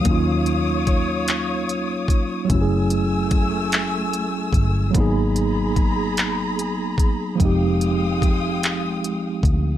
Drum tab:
HH |xxxxxx|xxxxxx|xxxxxx|xxxxxx|
CP |---x--|---x--|---x--|---x--|
BD |o-o--o|o-o--o|o-o--o|o-o--o|